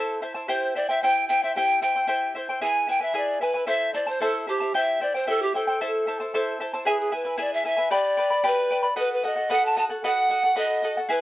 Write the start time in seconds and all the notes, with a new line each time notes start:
Already playing: E4 A4 C5 E5 A5
0.22 E4 C5 E5 A5
0.34 E4 C5 A5
0.48 E4 G4 C5 E5 G5
0.75 E4 C5 D5 E5 G5
0.89 E4 C5 E5 G5
1.03 E4 G4 C5 E5 G5
1.28 E4 C5 E5 G5
1.43 E4 C5 E5 G5
1.55 E4 G4 C5 E5 G5
1.82 E4 C5 E5 G5
1.95 E4 C5 G5
2.07 E4 G4 C5 E5 G5
2.35 E4 C5 E5 G5
2.49 E4 C5 G5
2.61 E4 G#4 B4 E5 G#5
2.87 E4 B4 E5 G5 G#5
3.00 E4 B4 E5 G#5
3.14 E4 G#4 B4 D5 E5 G#5
3.41 E4 B4 E5 G#5
3.54 E4 B4 G#5
3.67 E4 A4 C5 E5 A5
3.94 E4 C5 D5 E5 A5
4.07 E4 C5 A5
4.20 E4 A4 C5 E5 A5
4.47 E4 G4 C5 E5 A5
4.60 E4 C5 A5
4.74 E4 G4 C5 E5 G5
5.00 E4 C5 D5 E5 G5
5.14 E4 C5 G5
5.27 E4 G4 A4 C5 E5 G5
5.42 G4
5.54 E4 A4 C5 E5 G5
5.67 E4 C5 G5
5.81 E4 A4 C5 E5 A5
6.07 E4 C5 E5 A5
6.20 E4 C5 A5
6.34 E4 A4 C5 E5 A5
6.60 E4 C5 E5 A5
6.74 E4 C5 A5
6.85 E4 G#4 B4 E5 G#5
7.00 G#4
7.11 E4 B4 E5 G#5
7.25 E4 B4 G#5
7.38 E4 G#4 B4 D5 E5 G#5
7.54 E5
7.64 E4 B4 E5 G#5
7.77 E4 B4 G#5
7.91 G4 B4 D5 G5 B5
8.17 B4 D5 G5 B5
8.30 B4 D5 B5
8.44 G4 B4 D5 G5 B5
8.71 B4 D5 G5 B5
8.83 B4 D5 B5
8.96 F#4 A4 B4 D#5 F#5
9.13 B4
9.23 F#4 A4 D#5 F#5
9.36 F#4 A4 F#5
9.50 F#4 A4 B4 D#5 F#5
9.66 A5
9.76 F#4 A4 D#5 F#5 A5
9.89 F#4 A4 F#5
10.04 F#4 A4 B4 D#5 F#5
10.29 F#4 A4 D#5 F#5
10.43 F#4 A4 F#5
10.56 F#4 A4 B4 D#5 F#5
10.83 F#4 A4 D#5 F#5
10.97 F#4 A4 F#5
11.09 E4 G#4 B4 E5 G#5